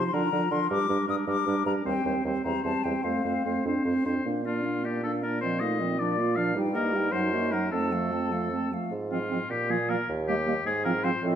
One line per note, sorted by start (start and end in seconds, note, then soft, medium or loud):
0.00 0.13 F3 soft
0.00 0.13 D#4 soft
0.00 0.12 C5 soft
0.07 0.16 C6 soft
0.12 0.22 D3 soft
0.12 0.32 F3 soft
0.12 0.32 D4 soft
0.12 0.30 A#4 soft
0.12 0.53 A#5 medium
0.31 0.41 D3 soft
0.31 0.51 F3 soft
0.31 0.49 D4 soft
0.31 0.50 A#4 soft
0.50 0.60 D3 soft
0.50 0.70 F3 soft
0.50 0.69 D4 soft
0.50 0.69 A#4 soft
0.50 0.70 C6 medium
0.69 0.79 G2 medium
0.69 0.89 G3 soft
0.69 0.88 D4 soft
0.69 0.88 A#4 soft
0.69 1.08 D6 medium
0.88 0.98 G2 soft
0.88 1.08 G3 soft
0.88 1.07 D4 soft
0.88 1.06 A#4 soft
1.07 1.17 G2 soft
1.07 1.27 G3 soft
1.07 1.27 D4 soft
1.07 1.26 A#4 soft
1.07 1.15 D#6 medium
1.27 1.36 G2 soft
1.27 1.47 G3 soft
1.27 1.46 D4 soft
1.27 1.46 A#4 soft
1.27 1.65 D6 medium
1.46 1.56 G2 soft
1.46 1.66 G3 soft
1.46 1.65 D4 soft
1.46 1.66 A#4 soft
1.65 1.75 G2 soft
1.65 1.84 G3 soft
1.65 1.84 D4 soft
1.65 1.85 A#4 soft
1.65 1.72 A#5 medium
1.85 1.94 D#2 soft
1.85 2.04 G3 soft
1.85 2.04 C4 soft
1.85 2.05 C5 soft
1.85 2.23 G5 medium
2.04 2.14 D#2 soft
2.04 2.24 G3 soft
2.04 2.24 C4 soft
2.04 2.24 C5 soft
2.24 2.33 D#2 soft
2.24 2.44 G3 soft
2.24 2.43 C4 soft
2.24 2.43 C5 soft
2.44 2.54 E2 soft
2.44 2.63 G3 soft
2.44 2.63 C4 soft
2.44 2.63 C5 soft
2.44 2.63 A#5 medium
2.64 2.73 E2 soft
2.64 2.84 G3 soft
2.64 2.84 C4 soft
2.64 2.83 C5 soft
2.64 2.85 A5 medium
2.83 2.93 E2 soft
2.83 3.04 G3 soft
2.83 3.04 C4 soft
2.83 3.03 C5 soft
2.83 3.05 G5 medium
3.03 3.13 F2 soft
3.03 3.24 A3 soft
3.03 3.24 C4 soft
3.03 3.24 C5 soft
3.03 3.65 F5 soft
3.24 3.34 F2 soft
3.24 3.45 A3 soft
3.24 3.45 C4 soft
3.24 3.44 C5 soft
3.45 3.55 F2 soft
3.45 3.65 A3 soft
3.45 3.64 C4 soft
3.45 3.64 C5 soft
3.65 3.74 F2 soft
3.65 3.84 C4 soft
3.65 3.86 D4 soft
3.65 3.84 C5 soft
3.84 3.94 F2 soft
3.84 4.06 C4 soft
3.84 4.05 C4 soft
3.84 4.05 C5 soft
4.04 4.14 F2 soft
4.04 4.24 C4 soft
4.04 4.25 D4 soft
4.04 4.25 C5 soft
4.25 6.57 A#2 soft
4.25 4.47 A#3 soft
4.25 4.45 D4 soft
4.25 4.47 F5 soft
4.44 4.65 A#3 soft
4.44 4.66 D4 soft
4.44 4.86 F4 soft
4.44 4.67 D5 soft
4.64 4.85 A#3 soft
4.64 4.85 D4 soft
4.64 4.87 F5 soft
4.84 5.02 A#3 soft
4.84 5.03 D4 soft
4.84 5.03 G4 soft
4.84 5.04 D5 soft
5.03 5.24 A#3 soft
5.03 5.25 D4 soft
5.03 5.12 A4 soft
5.03 5.25 F5 soft
5.23 5.42 A#3 soft
5.23 5.41 D4 soft
5.23 5.40 A#4 soft
5.23 5.42 D5 soft
5.41 5.63 F3 soft
5.41 5.63 C4 soft
5.41 5.61 C5 medium
5.41 5.64 D#5 soft
5.59 5.82 A3 soft
5.59 5.82 D#4 soft
5.59 6.00 D#5 medium
5.59 5.81 F5 soft
5.79 5.99 F3 soft
5.79 5.99 C4 soft
5.79 5.99 D#5 soft
5.99 6.20 F3 soft
5.99 6.20 D4 soft
5.99 6.37 D5 medium
5.99 6.21 D5 soft
6.18 6.38 A#3 soft
6.18 6.39 F4 soft
6.18 6.39 F5 soft
6.36 6.55 F3 soft
6.36 6.55 D4 soft
6.36 6.57 D5 soft
6.36 6.56 F5 medium
6.55 7.15 G2 soft
6.55 6.76 G3 soft
6.55 6.75 D#4 soft
6.55 6.77 G5 soft
6.74 6.96 A#3 soft
6.74 6.95 G4 soft
6.74 7.13 A#4 medium
6.74 6.98 D#5 soft
6.94 7.13 G3 soft
6.94 7.12 D#4 soft
6.94 7.13 G5 soft
7.12 7.71 F#2 soft
7.12 7.35 F#3 soft
7.12 7.34 D#4 soft
7.12 7.53 C5 medium
7.12 7.34 F#5 soft
7.32 7.54 A#3 soft
7.32 7.54 F#4 soft
7.32 7.55 D#5 soft
7.52 7.73 F#3 soft
7.52 7.72 D#4 soft
7.52 7.71 A#4 medium
7.52 7.71 F#5 soft
7.71 8.69 F2 soft
7.71 7.94 A3 soft
7.71 7.94 C4 soft
7.71 8.69 A4 soft
7.71 7.94 A5 soft
7.92 8.13 F3 soft
7.92 8.14 A3 soft
7.92 8.14 F5 soft
8.12 8.33 A3 soft
8.12 8.34 C4 soft
8.12 8.34 A5 soft
8.32 8.52 F3 soft
8.32 8.51 A3 soft
8.32 8.52 F5 soft
8.52 8.74 A3 soft
8.52 8.74 C4 soft
8.52 8.75 A5 soft
8.72 8.92 F3 soft
8.72 8.92 A3 soft
8.72 8.92 F5 soft
8.91 9.40 G#2 soft
9.11 9.18 F3 soft
9.11 9.18 C4 soft
9.11 9.52 F4 soft
9.11 9.19 D#5 soft
9.31 9.38 F3 soft
9.31 9.38 C4 soft
9.31 9.38 D#5 soft
9.50 9.99 A#2 soft
9.50 9.72 G4 medium
9.70 9.77 F3 soft
9.70 9.77 A#3 soft
9.70 9.91 G#4 medium
9.70 9.76 D5 soft
9.89 9.96 F3 soft
9.89 9.96 A#3 soft
9.89 10.09 A#4 medium
9.89 9.97 D5 soft
10.09 10.57 D#2 medium
10.28 10.35 G3 soft
10.28 10.35 A#3 soft
10.28 10.63 G4 medium
10.28 10.35 D#5 soft
10.47 10.53 G3 soft
10.47 10.54 A#3 soft
10.47 10.54 D#5 soft
10.65 11.13 G#2 medium
10.65 10.84 G#4 medium
10.85 10.92 F3 medium
10.85 10.92 C4 soft
10.85 11.05 A#4 medium
10.85 10.91 F5 soft
11.04 11.11 F3 soft
11.04 11.11 C4 soft
11.04 11.23 C5 medium
11.04 11.10 F5 soft
11.23 11.35 A2 medium
11.23 11.35 F3 medium
11.23 11.35 C4 medium
11.23 11.35 D#5 medium